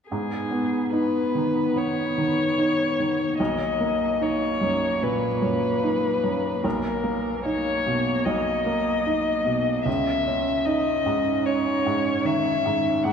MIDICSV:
0, 0, Header, 1, 4, 480
1, 0, Start_track
1, 0, Key_signature, 5, "minor"
1, 0, Tempo, 819672
1, 62, Time_signature, 4, 2, 24, 8
1, 3422, Tempo, 801068
1, 7787, End_track
2, 0, Start_track
2, 0, Title_t, "Violin"
2, 0, Program_c, 0, 40
2, 61, Note_on_c, 0, 68, 50
2, 526, Note_off_c, 0, 68, 0
2, 549, Note_on_c, 0, 71, 55
2, 1035, Note_on_c, 0, 73, 69
2, 1044, Note_off_c, 0, 71, 0
2, 1979, Note_off_c, 0, 73, 0
2, 1982, Note_on_c, 0, 75, 54
2, 2469, Note_on_c, 0, 73, 60
2, 2478, Note_off_c, 0, 75, 0
2, 2945, Note_on_c, 0, 71, 63
2, 2954, Note_off_c, 0, 73, 0
2, 3904, Note_on_c, 0, 70, 57
2, 3913, Note_off_c, 0, 71, 0
2, 4384, Note_off_c, 0, 70, 0
2, 4387, Note_on_c, 0, 73, 70
2, 4864, Note_on_c, 0, 75, 66
2, 4873, Note_off_c, 0, 73, 0
2, 5819, Note_off_c, 0, 75, 0
2, 5822, Note_on_c, 0, 76, 67
2, 6305, Note_on_c, 0, 75, 73
2, 6314, Note_off_c, 0, 76, 0
2, 6787, Note_on_c, 0, 73, 70
2, 6796, Note_off_c, 0, 75, 0
2, 7266, Note_on_c, 0, 76, 72
2, 7275, Note_off_c, 0, 73, 0
2, 7731, Note_on_c, 0, 78, 72
2, 7740, Note_off_c, 0, 76, 0
2, 7787, Note_off_c, 0, 78, 0
2, 7787, End_track
3, 0, Start_track
3, 0, Title_t, "Cello"
3, 0, Program_c, 1, 42
3, 69, Note_on_c, 1, 59, 41
3, 1966, Note_off_c, 1, 59, 0
3, 1993, Note_on_c, 1, 58, 44
3, 3882, Note_off_c, 1, 58, 0
3, 3906, Note_on_c, 1, 58, 41
3, 5831, Note_on_c, 1, 61, 47
3, 5840, Note_off_c, 1, 58, 0
3, 7744, Note_off_c, 1, 61, 0
3, 7757, Note_on_c, 1, 58, 50
3, 7787, Note_off_c, 1, 58, 0
3, 7787, End_track
4, 0, Start_track
4, 0, Title_t, "Felt piano"
4, 0, Program_c, 2, 0
4, 68, Note_on_c, 2, 44, 36
4, 169, Control_c, 2, 64, 127
4, 299, Note_on_c, 2, 59, 29
4, 544, Note_on_c, 2, 63, 35
4, 694, Note_off_c, 2, 59, 0
4, 790, Note_on_c, 2, 51, 34
4, 934, Note_off_c, 2, 63, 0
4, 1013, Note_off_c, 2, 44, 0
4, 1031, Note_on_c, 2, 59, 30
4, 1175, Note_off_c, 2, 51, 0
4, 1274, Note_on_c, 2, 51, 35
4, 1416, Note_off_c, 2, 59, 0
4, 1513, Note_on_c, 2, 63, 33
4, 1656, Note_off_c, 2, 51, 0
4, 1756, Note_on_c, 2, 51, 31
4, 1892, Note_off_c, 2, 63, 0
4, 1989, Note_off_c, 2, 51, 0
4, 1990, Note_on_c, 2, 35, 42
4, 1997, Control_c, 2, 64, 0
4, 2081, Control_c, 2, 64, 127
4, 2227, Note_on_c, 2, 58, 33
4, 2464, Note_on_c, 2, 63, 33
4, 2607, Note_off_c, 2, 58, 0
4, 2701, Note_on_c, 2, 42, 34
4, 2847, Note_off_c, 2, 63, 0
4, 2921, Note_off_c, 2, 35, 0
4, 2942, Note_on_c, 2, 46, 33
4, 3086, Note_off_c, 2, 42, 0
4, 3174, Note_on_c, 2, 42, 33
4, 3326, Note_off_c, 2, 46, 0
4, 3415, Note_on_c, 2, 63, 31
4, 3562, Note_off_c, 2, 42, 0
4, 3657, Note_on_c, 2, 42, 31
4, 3803, Note_off_c, 2, 63, 0
4, 3900, Note_off_c, 2, 42, 0
4, 3900, Note_on_c, 2, 35, 44
4, 3914, Control_c, 2, 64, 0
4, 3994, Control_c, 2, 64, 127
4, 4137, Note_on_c, 2, 58, 32
4, 4385, Note_on_c, 2, 63, 36
4, 4525, Note_off_c, 2, 58, 0
4, 4633, Note_on_c, 2, 47, 35
4, 4772, Note_off_c, 2, 63, 0
4, 4843, Note_off_c, 2, 35, 0
4, 4870, Note_on_c, 2, 35, 37
4, 5018, Note_off_c, 2, 47, 0
4, 5109, Note_on_c, 2, 58, 36
4, 5350, Note_on_c, 2, 63, 36
4, 5492, Note_off_c, 2, 58, 0
4, 5586, Note_on_c, 2, 47, 35
4, 5734, Note_off_c, 2, 63, 0
4, 5808, Note_off_c, 2, 35, 0
4, 5826, Note_on_c, 2, 37, 46
4, 5829, Note_off_c, 2, 47, 0
4, 5843, Control_c, 2, 64, 0
4, 5938, Control_c, 2, 64, 127
4, 6070, Note_on_c, 2, 61, 35
4, 6308, Note_on_c, 2, 63, 42
4, 6456, Note_off_c, 2, 61, 0
4, 6547, Note_on_c, 2, 44, 41
4, 6692, Note_off_c, 2, 63, 0
4, 6763, Note_off_c, 2, 37, 0
4, 6793, Note_on_c, 2, 61, 37
4, 6930, Note_off_c, 2, 44, 0
4, 7028, Note_on_c, 2, 44, 42
4, 7173, Note_off_c, 2, 61, 0
4, 7260, Note_on_c, 2, 51, 38
4, 7410, Note_off_c, 2, 44, 0
4, 7503, Note_on_c, 2, 44, 39
4, 7645, Note_off_c, 2, 51, 0
4, 7730, Note_off_c, 2, 44, 0
4, 7739, Note_on_c, 2, 44, 48
4, 7754, Control_c, 2, 64, 0
4, 7787, Note_off_c, 2, 44, 0
4, 7787, End_track
0, 0, End_of_file